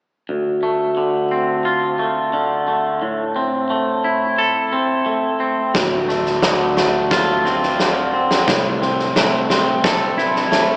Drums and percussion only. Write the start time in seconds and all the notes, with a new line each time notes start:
5.75 kick, snare
6.09 snare
6.26 snare
6.43 snare
6.77 snare
7.11 kick, snare
7.46 snare
7.63 snare
7.80 snare
8.31 snare
8.48 kick, snare
8.82 snare
9.00 snare
9.16 snare
9.50 snare
9.84 kick, snare
10.18 snare
10.36 snare
10.52 snare